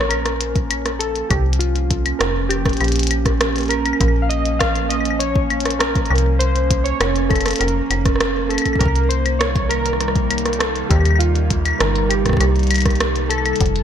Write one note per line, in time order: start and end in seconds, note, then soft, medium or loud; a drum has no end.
0.00 1.23 A#1 loud
0.00 8.77 F3 medium
0.00 13.57 A#3 medium
0.00 8.77 C#4 medium
0.00 0.11 C#5 loud
0.00 cross-stick medium
0.09 1.02 A#4 loud
0.09 closed hi-hat medium
0.09 claves medium
0.26 cross-stick medium
0.26 closed hi-hat medium
0.41 closed hi-hat medium
0.56 kick loud
0.56 closed hi-hat soft
0.71 closed hi-hat medium
0.71 claves medium
0.86 cross-stick medium
0.86 closed hi-hat medium
0.99 1.31 A4 loud
0.99 closed hi-hat medium
1.16 closed hi-hat soft
1.29 2.13 C2 loud
1.29 1.43 G4 medium
1.29 kick loud
1.29 closed hi-hat medium
1.29 claves medium
1.53 closed hi-hat medium
1.59 2.22 F4 loud
1.59 closed hi-hat medium
1.76 closed hi-hat soft
1.91 kick loud
1.91 closed hi-hat medium
2.06 closed hi-hat medium
2.06 claves medium
2.19 2.73 F1 loud
2.19 2.33 A#4 loud
2.19 cross-stick loud
2.19 closed hi-hat medium
2.49 3.73 G4 loud
2.49 closed hi-hat medium
2.49 claves medium
2.66 kick loud
2.66 cross-stick medium
2.66 closed hi-hat soft
2.69 closed hi-hat soft
2.73 closed hi-hat soft
2.77 3.93 A#1 loud
2.77 closed hi-hat soft
2.81 closed hi-hat soft
2.81 claves medium
2.84 closed hi-hat soft
2.88 closed hi-hat soft
2.92 closed hi-hat medium
2.96 closed hi-hat medium
2.99 closed hi-hat medium
3.03 closed hi-hat medium
3.07 closed hi-hat medium
3.11 closed hi-hat medium
3.11 claves medium
3.26 kick loud
3.26 cross-stick medium
3.26 closed hi-hat medium
3.41 cross-stick loud
3.41 closed hi-hat medium
3.56 closed hi-hat soft
3.58 closed hi-hat soft
3.61 closed hi-hat soft
3.63 closed hi-hat soft
3.66 closed hi-hat soft
3.68 4.24 A#4 loud
3.68 closed hi-hat soft
3.71 closed hi-hat medium
3.71 claves medium
3.86 closed hi-hat medium
3.86 claves medium
3.93 claves soft
4.01 6.03 A#1 loud
4.01 kick loud
4.01 closed hi-hat medium
4.01 claves soft
4.08 claves soft
4.22 4.30 F5 medium
4.29 4.58 D#5 loud
4.29 closed hi-hat medium
4.46 closed hi-hat medium
4.59 4.91 F5 loud
4.59 kick loud
4.59 cross-stick loud
4.59 closed hi-hat medium
4.76 closed hi-hat soft
4.89 5.21 D#5 loud
4.89 closed hi-hat medium
4.89 claves soft
5.00 claves soft
5.05 closed hi-hat medium
5.10 claves soft
5.19 5.82 C#5 loud
5.19 closed hi-hat medium
5.36 kick loud
5.50 closed hi-hat soft
5.50 claves medium
5.60 closed hi-hat medium
5.66 cross-stick medium
5.66 closed hi-hat medium
5.71 closed hi-hat medium
5.79 6.42 A#4 loud
5.79 cross-stick loud
5.79 closed hi-hat medium
5.96 kick loud
5.96 closed hi-hat soft
6.06 closed hi-hat soft
6.11 6.93 C2 loud
6.11 claves soft
6.16 closed hi-hat soft
6.18 closed hi-hat soft
6.39 6.86 C5 loud
6.39 closed hi-hat medium
6.56 closed hi-hat soft
6.71 kick loud
6.71 closed hi-hat medium
6.84 7.31 C#5 loud
6.84 closed hi-hat medium
7.00 7.53 F1 loud
7.00 cross-stick loud
7.00 closed hi-hat medium
7.00 claves soft
7.16 closed hi-hat soft
7.29 7.61 A4 loud
7.29 kick loud
7.29 closed hi-hat soft
7.29 claves soft
7.36 closed hi-hat soft
7.36 claves soft
7.41 closed hi-hat soft
7.41 claves soft
7.46 cross-stick medium
7.46 closed hi-hat medium
7.46 claves soft
7.48 closed hi-hat soft
7.51 closed hi-hat medium
7.51 claves soft
7.53 closed hi-hat soft
7.56 closed hi-hat medium
7.56 claves soft
7.58 7.81 F1 loud
7.58 8.53 A#4 loud
7.58 closed hi-hat soft
7.61 closed hi-hat medium
7.61 claves medium
7.68 closed hi-hat soft
7.90 8.58 F1 medium
7.90 closed hi-hat medium
7.90 claves medium
8.06 kick loud
8.06 cross-stick medium
8.06 closed hi-hat medium
8.16 cross-stick soft
8.21 cross-stick loud
8.21 closed hi-hat medium
8.26 cross-stick soft
8.49 8.81 A4 medium
8.49 closed hi-hat soft
8.49 claves soft
8.54 closed hi-hat medium
8.54 claves soft
8.58 claves soft
8.62 kick soft
8.62 closed hi-hat medium
8.62 claves soft
8.66 claves soft
8.73 kick medium
8.73 claves soft
8.79 10.83 C2 loud
8.79 13.83 C3 medium
8.79 13.57 D#3 medium
8.79 13.57 G3 medium
8.79 13.57 D#4 loud
8.79 9.11 A#4 loud
8.79 kick loud
8.79 closed hi-hat medium
8.79 claves soft
8.86 kick medium
8.86 claves soft
8.96 closed hi-hat soft
9.09 9.41 C5 loud
9.09 closed hi-hat medium
9.26 closed hi-hat soft
9.26 claves soft
9.39 9.71 C#5 loud
9.39 cross-stick loud
9.39 closed hi-hat medium
9.56 kick loud
9.56 closed hi-hat soft
9.69 10.63 A#4 loud
9.69 closed hi-hat medium
9.69 claves medium
9.86 cross-stick soft
9.86 closed hi-hat medium
9.93 cross-stick soft
10.01 cross-stick soft
10.01 closed hi-hat medium
10.08 cross-stick medium
10.16 kick loud
10.16 closed hi-hat soft
10.31 closed hi-hat medium
10.31 claves medium
10.38 closed hi-hat medium
10.46 cross-stick medium
10.46 closed hi-hat medium
10.53 closed hi-hat soft
10.59 10.91 A4 loud
10.59 cross-stick loud
10.59 closed hi-hat medium
10.76 closed hi-hat soft
10.89 11.73 D#2 loud
10.89 11.21 G4 medium
10.89 kick loud
10.89 closed hi-hat medium
10.89 claves soft
10.96 claves soft
11.01 claves soft
11.06 closed hi-hat medium
11.06 claves soft
11.11 claves soft
11.16 11.82 F4 loud
11.16 claves soft
11.21 closed hi-hat medium
11.36 closed hi-hat soft
11.51 kick loud
11.51 closed hi-hat medium
11.66 closed hi-hat soft
11.66 claves soft
11.68 claves soft
11.71 claves soft
11.73 claves soft
11.76 12.11 A#4 loud
11.76 claves soft
11.81 12.33 G1 loud
11.81 cross-stick loud
11.81 closed hi-hat medium
11.96 closed hi-hat soft
12.09 13.33 G4 medium
12.09 closed hi-hat medium
12.09 claves medium
12.26 kick medium
12.26 cross-stick medium
12.26 closed hi-hat medium
12.29 kick medium
12.29 cross-stick soft
12.33 kick medium
12.33 cross-stick soft
12.37 13.53 C2 loud
12.37 kick loud
12.37 cross-stick soft
12.41 cross-stick soft
12.41 closed hi-hat medium
12.41 claves medium
12.44 cross-stick soft
12.48 cross-stick soft
12.52 cross-stick soft
12.52 closed hi-hat soft
12.59 closed hi-hat soft
12.63 closed hi-hat soft
12.67 closed hi-hat soft
12.71 closed hi-hat medium
12.71 claves medium
12.74 closed hi-hat soft
12.74 closed hi-hat medium
12.74 claves soft
12.78 closed hi-hat soft
12.78 claves soft
12.81 closed hi-hat soft
12.81 claves soft
12.86 kick loud
12.86 cross-stick medium
12.86 closed hi-hat medium
12.86 claves soft
12.89 closed hi-hat soft
12.89 claves soft
12.93 closed hi-hat soft
12.93 claves soft
12.97 cross-stick loud
12.97 closed hi-hat medium
12.97 claves soft
13.16 closed hi-hat soft
13.29 13.83 A4 medium
13.29 closed hi-hat medium
13.29 claves soft
13.38 claves soft
13.46 closed hi-hat medium
13.46 claves medium
13.53 closed hi-hat soft
13.53 claves soft
13.60 13.83 F1 loud
13.60 13.83 F3 medium
13.60 13.83 G3 medium
13.60 13.83 A3 medium
13.60 13.83 F4 medium
13.60 kick loud
13.60 closed hi-hat medium
13.66 closed hi-hat soft
13.76 closed hi-hat soft